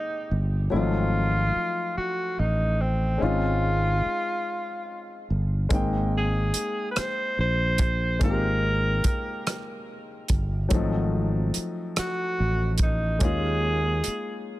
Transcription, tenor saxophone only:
Already playing: D#4
0.72 F4
1.97 F#4
2.39 D#4
2.81 C4
3.22 F4
6.17 G#4
6.91 B4
6.99 C5
7.41 C5
8.23 A#4
11.99 F#4
12.83 D#4
13.24 G#4

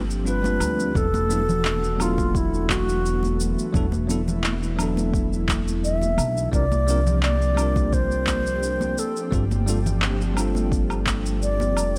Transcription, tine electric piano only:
0.24 G3 C4 D4 F4 B4
0.42 G3 C4 D4 F4 B4
0.95 F#3 B3 D4 E4 A4
1.29 F#3 B3 D4 E4 A4
1.97 F#3 B3 D4
2.02 E4 A4
3.73 F#3 B3 D4 E4 A4
4.07 F#3 B3 D4 E4 A4
4.76 F#3 B3 D4
4.81 E4 A4
6.52 G3 C4 D4 F4 A#4
6.87 G3 C4 D4 F4 A#4
7.55 G3 C4 D4
7.60 F4 A#4
9.31 G3 C4 D4 F4 A4
9.66 G3 C4 D4 F4 A4
10.34 G3 C4 D4
10.39 F4 A4

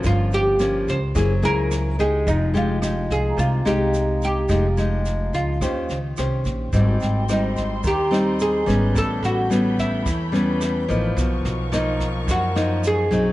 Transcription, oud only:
0.07 F4
0.34 G4
0.90 C5
1.45 A#4
2.00 G#4
2.28 D#4
2.57 F4
3.12 G#4
3.39 F4
3.67 G4
4.25 G4
5.34 F4
7.33 D#4
7.87 G4
8.42 G#4
8.98 A4
9.25 F#4
9.79 E4
11.75 D#4
12.31 F#4
12.87 G#4

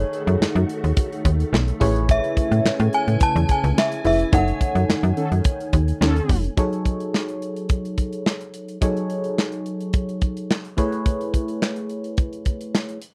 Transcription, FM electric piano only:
Already playing: D#4 G#4 A4 C#5
1.80 E4 G#4 B4 C#5
4.04 E4 G#4 B4 E5
4.32 D#4 A4 C#5 G#5
6.57 F#3 D#4 G#4 A4 C#5
8.81 F#3 D#4 G#4 A4 C#5
10.77 A3 E4 G#4 B4 C#5

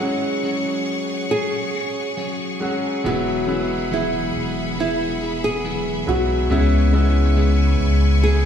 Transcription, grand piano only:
Already playing: F#4
0.00 F#3 G#3 C#4 F#4
2.60 F#3 G#3 C#4 F#4
3.04 F#3 G#3 B3 E4
3.47 F#3 G#3 B3 E4
6.06 F#3 G#3 B3 E4
6.50 C#3 G#3 B3 C#4 E4
6.93 G#3 B3 C#4 E4

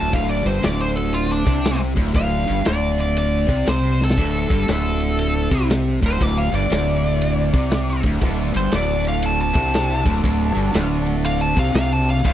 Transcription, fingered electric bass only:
Already playing: D1
0.14 D1
0.45 G1
0.64 D1
1.47 C2
1.97 D1
2.14 D1
2.50 G1
2.66 D1
3.49 C2
3.67 C2
4.17 D1
4.50 G1
4.68 D1
5.52 C2
6.03 D1
6.21 D1
6.53 G1
6.71 D1
7.54 C2
8.04 D1
8.22 D1
8.55 G1
8.72 D1
9.56 C2
10.07 D1
10.24 D1
10.55 G1
10.74 D1
11.57 C2
11.74 C2
12.25 D1

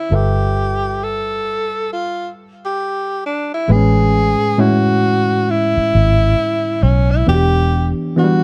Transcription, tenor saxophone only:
Already playing: E4
0.15 G4
1.03 A4
1.93 F4
2.65 G4
3.26 D4
3.54 E4
3.71 G#4
4.60 F#4
5.50 E4
6.83 C#4
7.11 E4
7.29 G4
8.19 F#4

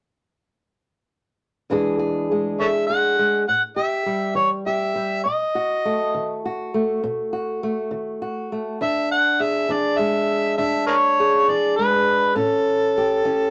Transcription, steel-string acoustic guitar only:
1.70 E2 E3 G#3 D4 G#4
1.99 G#4
2.32 G#3
2.59 E3
2.90 G#4
3.19 G#3
3.49 A2
3.76 G4
4.06 G3
4.35 E3
4.66 G4
4.96 G3
5.25 B2
5.55 F#4
5.85 A3
6.14 D#3
6.45 F#4
6.74 A3
7.04 B2
7.33 F#4
7.63 A3
7.91 D#3
8.22 F#4
8.52 A3
8.81 E2 D4
9.40 G#4
9.69 E3 D4
9.99 G#3
10.58 E2 D4
11.20 G#4
11.48 E3 D4
11.79 G#3
12.36 A2 C#4
12.97 G4
13.25 E3 C#4

